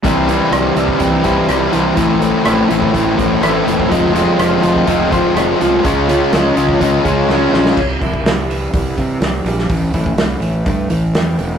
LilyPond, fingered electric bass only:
\new Staff \with { instrumentName = "Fingered electric bass" } { \clef bass \time 4/4 \key a \phrygian \tempo 4 = 124 c,4 c,8 c,8 c,4 c,8 c,8 | a,,4 a,,8 a,,8 a,,8 a,,8 a,,8 e,,8 | f,,4 f,,8 f,,8 f,,4 f,,8 c,8 | des,4 des,8 des,8 des,8 des,8 des,8 bes,,8 |
c,8 c,8 c,4 c,8 c8 c,8 bes,,8 | a,,8 a,,8 c,8 a,,8 g,8 a,,8 e,8 e,,8 | }